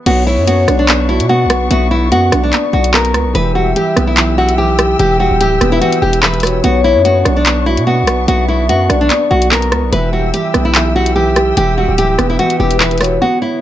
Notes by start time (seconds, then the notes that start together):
0.06 B1 B3 D4 F#4 C#5 C#6, closed hi-hat, crash
0.27 E4 C#5
0.38 F#2
0.47 B3 F#4, closed hi-hat
0.68 B1 D4, cross-stick, closed hi-hat
0.79 D4
0.88 B3, clap, closed hi-hat
1.09 E4 F#4
1.20 B2, closed hi-hat
1.29 B3 F#4
1.45 B1
1.50 B4, cross-stick, closed hi-hat
1.70 B1 B3 F#4 E5, closed hi-hat
1.91 E4
2.12 F#2 B3 F#4, closed hi-hat
2.32 B1 D4 D5, cross-stick, closed hi-hat
2.43 D4
2.53 B3, clap, closed hi-hat
2.73 B1 F#4
2.84 closed hi-hat
2.94 B3 A#4, clap
3.05 closed hi-hat
3.14 C#2 B4, cross-stick, closed hi-hat
3.25 B1
3.35 E1 E3 G4 B4 E5 G5 E6, closed hi-hat
3.55 G3 F#4
3.76 E3 G4, closed hi-hat
3.96 B1 B3, cross-stick, closed hi-hat
4.07 E4
4.17 E3, clap, closed hi-hat
4.38 E4 F#4
4.49 closed hi-hat
4.58 E3 G4
4.79 G4, cross-stick, closed hi-hat
4.99 E1 E3 G4 G5, closed hi-hat
5.20 G3 F#4
5.31 D1
5.40 E3 G4, closed hi-hat
5.61 E1 B3 B4, cross-stick, closed hi-hat
5.72 E4
5.81 E3 F#4, closed hi-hat
5.93 closed hi-hat
6.02 E1 E4 G4
6.13 closed hi-hat
6.23 E3 B4, clap
6.34 closed hi-hat
6.40 F#4 C#5, cross-stick, closed hi-hat, open hi-hat
6.47 closed hi-hat
6.64 B1 B3 D4 F#4 C#5 C#6, closed hi-hat
6.84 E4 C#5
6.95 F#2
7.04 B3 F#4, closed hi-hat
7.25 B1 D4, cross-stick, closed hi-hat
7.36 D4
7.46 B3, clap, closed hi-hat
7.66 E4 F#4
7.77 B2, closed hi-hat
7.87 B3 F#4
8.03 B1
8.07 B4, cross-stick, closed hi-hat
8.28 B1 B3 F#4 E5, closed hi-hat
8.48 E4
8.69 F#2 B3 F#4, closed hi-hat
8.90 B1 D4 D5, cross-stick, closed hi-hat
9.01 D4
9.10 B3, clap, closed hi-hat
9.31 B1 F#4
9.42 closed hi-hat
9.51 B3 A#4, clap
9.62 closed hi-hat
9.72 C#2 B4, cross-stick, closed hi-hat
9.83 B1
9.92 E1 E3 G4 B4 E5 G5 E6, closed hi-hat
10.13 G3 F#4
10.33 E3 G4, closed hi-hat
10.54 B1 B3, cross-stick, closed hi-hat
10.65 E4
10.74 E3, clap, closed hi-hat
10.95 E4 F#4
11.06 closed hi-hat
11.16 E3 G4
11.36 G4, cross-stick, closed hi-hat
11.57 E1 E3 G4 G5, closed hi-hat
11.78 G3 F#4
11.88 D1
11.98 E3 G4, closed hi-hat
12.18 E1 B3 B4, cross-stick, closed hi-hat
12.30 E4
12.39 E3 F#4, closed hi-hat
12.50 closed hi-hat
12.59 E1 E4 G4
12.71 closed hi-hat
12.80 E3 B4, clap
12.91 closed hi-hat
12.98 F#4 C#5, cross-stick, closed hi-hat, open hi-hat
13.04 closed hi-hat
13.21 D3 B3 F#4 C#5
13.42 E4 C#5